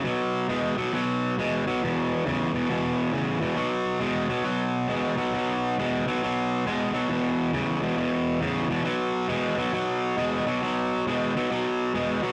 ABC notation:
X:1
M:4/4
L:1/8
Q:"Swing" 1/4=136
K:Edor
V:1 name="Overdriven electric guitar" clef=bass
[B,,F,]2 [B,,^G,] [B,,F,] [B,,F,]2 [B,,G,] [B,,F,] | [E,,B,,]2 [E,,C,] [E,,B,,] [E,,B,,]2 [E,,C,] [E,,B,,] | [B,,F,]2 [B,,^G,] [B,,F,] [B,,F,]2 [B,,G,] [B,,F,] | [B,,F,]2 [B,,^G,] [B,,F,] [B,,F,]2 [B,,G,] [B,,F,] |
[E,,B,,]2 [E,,C,] [E,,B,,] [E,,B,,]2 [E,,C,] [E,,B,,] | [B,,F,]2 [B,,^G,] [B,,F,] [B,,F,]2 [B,,G,] [B,,F,] | [B,,F,]2 [B,,^G,] [B,,F,] [B,,F,]2 [B,,G,] [B,,F,] |]